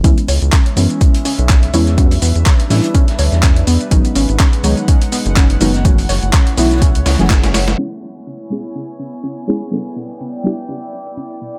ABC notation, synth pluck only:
X:1
M:4/4
L:1/8
Q:"Swing 16ths" 1/4=124
K:C#m
V:1 name="Synth pluck"
C c C B, C C C c | C B, C C C c C B, | C C C c C B, C C | C c C B, C C C c |
C c C B, C C C c | C B, C C C c C B, |]